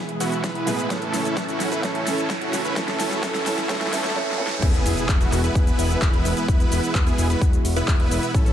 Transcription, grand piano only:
0.00 0.67 E3 medium
0.00 0.67 G#3 medium
0.00 0.67 B3 medium
0.00 0.68 G#4 loud
0.66 0.87 A2 loud
0.66 0.87 E3 medium
0.66 0.87 G#3 medium
0.66 0.88 B3 medium
0.66 0.88 G#4 loud
0.89 1.81 A2 medium
0.89 1.81 E3 medium
0.89 1.81 A3 medium
0.89 1.82 C#4 medium
0.89 1.82 A4 loud
1.82 2.74 A2 medium
1.82 2.74 E3 medium
1.82 2.74 A3 medium
1.82 2.75 C#4 medium
1.82 2.75 A4 loud
2.75 3.20 A2 medium
2.75 3.21 E3 medium
2.75 3.21 A3 medium
2.75 3.21 C#4 medium
2.75 3.22 A4 loud
3.22 3.67 A2 medium
3.22 3.67 E3 medium
3.22 3.68 A3 medium
3.22 3.68 C#4 medium
3.22 3.68 A4 loud
3.68 3.90 A2 loud
3.68 3.91 E3 medium
3.68 3.91 A3 loud
3.68 3.91 C#4 medium
3.68 3.91 A4 loud
3.91 4.13 A2 loud
3.91 4.14 E3 medium
3.91 4.14 A3 medium
3.91 4.14 C#4 medium
3.91 4.15 A4 loud
4.15 4.36 A2 medium
4.15 4.37 E3 medium
4.15 4.37 A3 medium
4.15 4.38 C#4 medium
4.15 4.38 A4 loud
4.38 4.60 A2 loud
4.38 4.60 E3 loud
4.38 4.61 A3 medium
4.38 4.61 C#4 loud
4.38 4.61 A4 loud

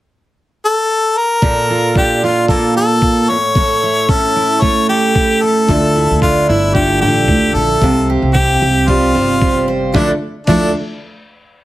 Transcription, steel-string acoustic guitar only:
1.43 3.29 A#2 medium
1.43 2.77 A4 soft
1.70 2.22 F4 medium
1.97 3.35 D4 medium
2.23 3.02 F4 medium
2.50 3.35 A#3 medium
2.77 3.57 A4 medium
3.03 3.35 F4 soft
3.30 3.55 A2 medium
3.57 5.69 A2 medium
3.57 4.89 A4 medium
3.83 4.36 E4 medium
4.09 5.74 C#4 medium
4.36 5.16 E4 medium
4.62 6.76 A3 medium
4.89 5.43 A4 medium
5.17 5.95 E4 soft
5.43 5.70 A4 medium
5.70 7.82 D3 medium
5.70 7.01 A4 medium
5.96 6.49 E4 medium
6.23 7.88 D4 medium
6.50 7.27 E4 medium
6.76 7.88 A3 medium
7.03 7.55 A4 medium
7.29 7.87 E4 soft
7.56 7.82 A4 medium
7.83 9.93 C3 medium
7.83 9.14 C5 medium
8.10 8.60 G4 medium
8.34 9.95 C4 medium
8.62 9.41 G4 medium
8.88 9.94 G3 medium
9.15 9.67 C5 medium
9.42 9.95 G4 soft
9.68 9.95 C5 medium
9.94 10.11 D3 medium
9.94 10.11 F3 medium
9.94 10.11 A3 medium
9.94 10.12 D4 medium
9.94 10.12 E4 medium
9.94 10.12 A4 medium
10.48 10.70 D3 medium
10.48 10.70 F3 medium
10.48 10.70 A3 medium
10.48 10.71 D4 medium
10.48 10.71 E4 medium
10.48 10.71 A4 medium

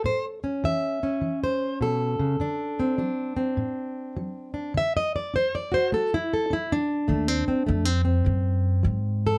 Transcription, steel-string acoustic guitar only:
0.04 0.59 A2 medium
0.04 0.25 C5 loud
0.44 1.02 C#4 soft
0.64 1.19 E3 medium
0.64 1.43 E5 loud
1.03 2.38 C#4 soft
1.21 1.77 E3 medium
1.44 1.82 C5 medium
1.81 2.19 B2 medium
1.81 3.00 A4 medium
2.19 2.39 C#3 medium
2.40 2.95 D3 medium
2.40 2.98 D4 medium
2.80 3.36 C4 soft
2.98 3.53 F#3 medium
2.98 4.53 D4 soft
3.37 4.77 C4 soft
3.57 4.12 A2 medium
4.17 4.71 F#3 medium
4.54 4.72 D4 soft
4.74 5.29 D3 medium
4.74 4.96 E5 loud
4.97 5.15 D#5 medium
5.16 5.35 D5 medium
5.34 5.88 D4 medium
5.34 5.54 C5 loud
5.55 5.74 D5 medium
5.72 6.12 F#4 medium
5.72 5.93 C5 loud
5.92 6.47 A3 medium
5.92 6.13 A4 loud
6.14 6.33 E4 loud
6.33 6.52 A4 medium
6.50 6.70 D4 medium
6.50 6.72 E4 medium
6.72 7.89 D4 loud
7.08 7.64 D#3 medium
7.08 7.28 A3 medium
7.28 7.47 C4 soft
7.48 7.66 C4 medium
7.67 7.85 A3 medium
7.85 8.04 C4 soft
8.05 9.38 C4 soft
8.25 8.80 A2 medium
8.83 9.38 F#3 medium
9.27 9.38 A4 loud

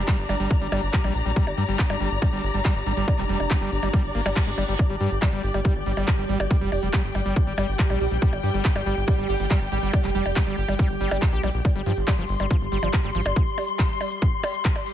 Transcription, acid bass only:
0.08 0.17 G3 loud
0.29 0.35 G3 medium
0.40 0.49 G3 loud
0.61 0.68 G3 medium
0.72 0.81 G3 loud
0.93 1.00 G3 medium
1.04 1.14 G3 loud
1.26 1.32 G3 medium
1.36 1.46 G3 loud
1.58 1.64 G3 medium
1.68 1.78 G3 loud
1.90 1.96 G3 medium
2.01 2.10 G3 loud
2.22 2.28 G3 medium
2.33 2.42 G3 loud
2.54 2.60 G3 medium
2.65 2.74 G3 loud
2.86 2.93 G3 medium
2.97 3.06 G3 loud
3.18 3.25 G3 medium
3.29 3.39 G3 loud
3.51 3.57 G3 medium
3.61 3.71 G3 loud
3.83 3.89 G3 medium
3.93 4.03 G3 loud
4.15 4.21 A#3 medium
4.26 4.29 G3 loud
4.36 4.46 G3 medium
4.47 4.51 G#3 medium
4.58 4.64 G3 medium
4.68 4.75 G3 medium
4.90 4.96 G3 medium
5.01 5.10 G3 loud
5.22 5.28 G3 medium
5.33 5.42 G3 loud
5.54 5.60 G3 medium
5.65 5.74 G3 loud
5.86 5.93 G3 medium
5.97 6.06 G3 loud
6.18 6.25 G3 medium
6.29 6.39 G3 loud
6.51 6.57 G3 medium
6.61 6.71 G3 loud
6.83 6.89 G3 medium
6.93 7.03 G3 loud
7.15 7.21 G3 medium
7.26 7.35 G3 loud
7.47 7.53 G3 medium
7.58 7.67 G3 loud
7.79 7.85 G3 medium
7.90 7.99 G3 loud
8.11 8.18 G3 medium
8.22 8.31 G3 loud
8.43 8.50 G3 medium
8.54 8.64 G3 loud
8.76 8.82 G3 medium
8.86 8.96 G3 loud
9.08 9.14 G3 medium
9.18 9.28 G3 loud
9.40 9.46 G3 medium
9.51 9.60 G3 loud
9.72 9.78 G3 medium
9.83 9.92 G3 loud
10.04 10.10 G3 medium
10.15 10.24 G3 loud
10.36 10.43 G3 medium
10.47 10.56 G3 loud
10.68 10.75 G3 medium
10.79 10.89 G3 loud
11.01 11.10 G3 loud
11.11 11.18 G3 medium
11.33 11.42 G4 medium
11.43 11.50 G3 medium
11.76 11.82 G3 medium
11.86 11.93 F3 medium
12.08 12.14 G3 medium
12.18 12.25 F3 medium
12.40 12.46 G3 medium
12.51 12.57 F3 medium
12.72 12.78 G3 medium
12.83 12.89 F3 medium
13.04 13.10 G3 medium
13.15 13.21 F3 medium

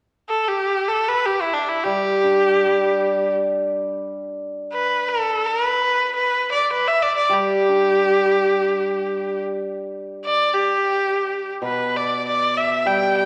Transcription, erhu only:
0.29 0.50 A4 medium
0.48 0.90 G4 medium
0.88 1.10 A4 medium
1.08 1.27 B4 medium
1.26 1.43 G4 medium
1.41 1.55 E4 medium
1.54 1.70 D4 medium
1.69 1.85 E4 medium
1.84 3.34 G4 medium
4.74 5.10 B4 medium
5.09 5.48 A4 medium
5.46 5.65 A#4 medium
5.65 6.13 B4 medium
6.15 6.50 B4 medium
6.52 6.70 D5 medium
6.73 6.89 B4 medium
6.88 7.04 E5 medium
7.02 7.16 D5 medium
7.17 7.35 D5 medium
7.34 9.41 G4 medium
10.26 10.56 D5 medium
10.55 11.52 G4 medium
11.65 11.98 B4 medium
11.96 12.26 D5 medium
12.27 12.59 D5 medium
12.57 12.88 E5 medium
12.87 13.16 G5 medium
13.17 13.25 G5 medium

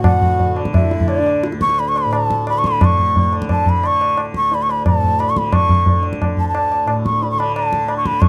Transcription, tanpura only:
0.00 1.52 D2 medium
0.00 2.05 A2 medium
0.00 0.49 D3 medium
0.49 1.01 D3 medium
1.01 2.55 D3 medium
1.53 4.32 D2 medium
2.05 2.81 A2 medium
2.55 3.30 D3 medium
2.81 4.84 A2 medium
3.30 3.83 D3 medium
3.83 5.33 D3 medium
4.32 6.34 D2 medium
4.84 6.85 A2 medium
5.33 5.85 D3 medium
5.85 7.34 D3 medium
6.34 8.29 D2 soft
6.85 8.29 A2 medium
7.34 7.84 D3 medium
7.84 8.29 D3 medium

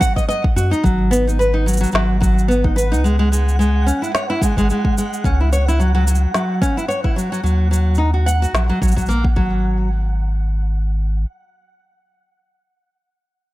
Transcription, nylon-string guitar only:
0.01 0.14 F#5 loud
0.16 0.23 D#5 medium
0.29 0.42 D#5 loud
0.56 0.70 F#4 medium
0.71 0.82 D#4 medium
0.83 1.10 F#3 medium
1.11 1.25 B3 loud
1.27 1.38 D#4 medium
1.39 1.53 B4 medium
1.54 1.65 D#4 medium
1.66 1.79 F#3 medium
1.81 1.92 F#3 medium
1.93 2.19 F#3 medium
2.20 2.47 F#3 medium
2.48 2.62 B3 medium
2.64 2.75 D#4 medium
2.76 2.91 B4 medium
2.92 3.02 D#4 medium
3.04 3.18 G#3 medium
3.19 3.30 G#3 medium
3.32 3.58 G#3 medium
3.59 3.85 G#3 medium
3.86 4.00 C#4 medium
4.02 4.13 E4 medium
4.15 4.29 C#5 medium
4.30 4.40 E4 loud
4.42 4.56 G#3 medium
4.58 4.68 G#3 medium
4.71 4.96 G#3 medium
4.98 5.23 G#3 medium
5.25 5.38 C#4 medium
5.41 5.51 E4 medium
5.53 5.67 C#5 medium
5.68 5.78 E4 medium
5.80 5.93 F#3 medium
5.95 6.05 F#3 medium
6.07 6.33 F#3 medium
6.34 6.60 F#3 medium
6.62 6.75 C#4 medium
6.77 6.88 E4 medium
6.88 7.03 C#5 medium
7.04 7.15 E4 medium
7.16 7.31 F#3 medium
7.32 7.42 F#3 medium
7.43 7.70 F#3 medium
7.71 7.97 F#3 medium
7.98 8.12 D#4 medium
8.14 8.25 F#4 medium
8.26 8.41 F#5 medium
8.42 8.53 F#4 medium
8.54 8.68 F#3 medium
8.69 8.80 F#3 medium
8.82 8.95 F#3 medium
8.96 9.08 F#3 medium
9.09 9.23 A#3 medium
9.36 9.87 F#3 medium

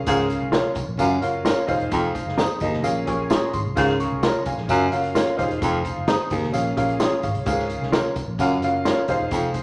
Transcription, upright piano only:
0.07 0.73 C#3 medium
0.07 0.57 C#4 medium
0.07 0.57 F4 medium
0.07 0.57 G#4 medium
0.07 0.57 A#4 medium
0.07 0.58 F5 loud
0.98 1.17 C#4 medium
0.98 1.18 F4 medium
0.98 1.18 F#4 medium
0.98 1.18 A#4 medium
0.98 1.18 F5 loud
1.21 1.59 C#4 medium
1.21 1.60 F4 medium
1.21 1.60 F#4 medium
1.21 1.60 A#4 medium
1.21 1.60 F5 medium
1.67 2.42 D#4 loud
1.67 2.42 F4 medium
1.67 2.42 G#4 medium
1.67 2.43 C5 medium
1.67 2.43 F5 loud
2.62 2.83 D#5 medium
2.83 3.49 A#2 medium
2.83 3.02 C#4 medium
2.83 3.02 F4 medium
2.83 3.03 G#4 medium
2.83 3.03 A#4 medium
2.83 3.03 F5 medium
3.06 3.44 C#4 medium
3.06 3.45 F4 medium
3.06 3.45 G#4 medium
3.06 3.45 A#4 medium
3.06 3.45 C#5 loud
3.06 3.29 G#5 medium
3.30 3.52 A#5 medium
3.53 3.75 C6 medium
3.75 4.42 C#3 medium
3.75 4.26 C#4 medium
3.75 4.26 F4 medium
3.75 4.27 G#4 medium
3.75 4.27 A#4 medium
3.75 4.00 F5 loud
4.00 4.22 A#5 medium
4.00 4.22 C#6 medium
4.24 4.46 A#5 medium
4.46 4.68 F5 medium
4.46 4.90 G#5 medium
4.68 4.87 C#4 medium
4.68 4.88 F4 medium
4.68 4.88 F#4 medium
4.68 4.88 A#4 medium
4.68 4.88 F5 medium
4.91 5.29 C#4 medium
4.91 5.29 F4 medium
4.91 5.29 F#4 medium
4.91 5.30 A#4 medium
4.91 5.30 F5 loud
5.37 6.12 D#4 medium
5.37 6.12 F4 medium
5.37 5.44 G4 medium
5.37 6.12 C5 medium
5.37 6.13 F5 loud
5.43 6.15 G#4 medium
6.52 7.19 A#2 medium
6.52 6.72 C#4 medium
6.52 6.72 F4 medium
6.52 6.72 G#4 medium
6.52 6.72 A#4 medium
6.52 6.73 F5 medium
6.76 7.14 C#4 medium
6.76 7.14 F4 medium
6.76 7.15 G#4 medium
6.76 7.15 A#4 medium
6.76 7.01 F5 medium
7.00 7.22 A#5 medium
7.23 7.68 C#5 medium
7.23 7.46 F5 medium
7.46 8.12 C#3 medium
7.46 7.96 C#4 medium
7.46 7.96 F4 medium
7.46 7.96 G#4 medium
7.46 7.97 A#4 medium
7.46 7.97 F5 medium
8.39 8.57 C#4 medium
8.39 8.58 F4 medium
8.39 8.58 F#4 medium
8.39 8.58 A#4 medium
8.39 8.58 F5 loud
8.62 8.99 C#4 medium
8.62 9.00 F4 medium
8.62 9.00 F#4 medium
8.62 9.00 A#4 medium
8.62 9.01 F5 loud
9.08 9.63 D#4 medium
9.08 9.63 F4 medium
9.08 9.63 G#4 medium
9.08 9.63 C5 medium
9.08 9.63 F5 loud

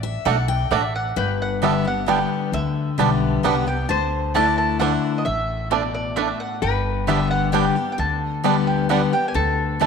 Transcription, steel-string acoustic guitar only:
0.03 0.25 E5 loud
0.25 0.48 F#5 loud
0.48 0.71 G5 loud
0.71 1.05 F#5 loud
1.16 2.03 G2 medium
1.62 1.85 D3 medium
1.62 1.85 G3 medium
1.62 1.85 B3 medium
1.62 1.83 G4 loud
1.85 2.07 B3 soft
1.85 2.06 G4 medium
2.06 2.50 D3 medium
2.06 2.51 G3 medium
2.06 2.51 B3 loud
2.06 2.52 G4 loud
2.53 2.97 D3 loud
2.98 3.42 D3 loud
2.98 3.42 G3 medium
2.98 3.42 B3 loud
2.98 3.43 G4 loud
3.43 3.66 D3 medium
3.43 3.67 G3 loud
3.43 3.67 B3 loud
3.43 3.65 G4 loud
3.67 3.90 B3 soft
3.67 3.88 G4 medium
3.89 4.33 D3 loud
4.35 4.78 D3 medium
4.35 4.78 A3 medium
4.35 4.79 D4 loud
4.35 4.79 E4 loud
4.79 5.23 D3 medium
4.79 5.24 A3 loud
4.79 5.24 D4 loud
4.79 5.24 E4 medium
5.26 6.12 A2 medium
5.71 6.14 B2 medium
6.17 6.60 A2 medium
6.62 7.49 G2 loud
7.07 7.51 D3 loud
7.07 7.51 G3 medium
7.07 7.52 B3 loud
7.07 7.52 G4 loud
7.52 7.75 D3 medium
7.52 7.76 G3 loud
7.52 7.76 B3 medium
7.52 7.75 G4 loud
7.76 7.99 B3 soft
7.76 7.98 G4 medium
7.98 8.42 D3 medium
8.44 8.87 D3 medium
8.44 8.88 G3 medium
8.44 8.88 B3 loud
8.44 8.88 G4 loud
8.89 9.12 D3 loud
8.89 9.12 G3 medium
8.89 9.13 B3 loud
8.89 9.11 G4 loud
9.13 9.35 B3 medium
9.13 9.34 G4 medium
9.34 9.78 D3 medium
9.80 9.87 D3 medium
9.80 9.87 A3 loud
9.80 9.87 D4 loud
9.80 9.87 E4 loud

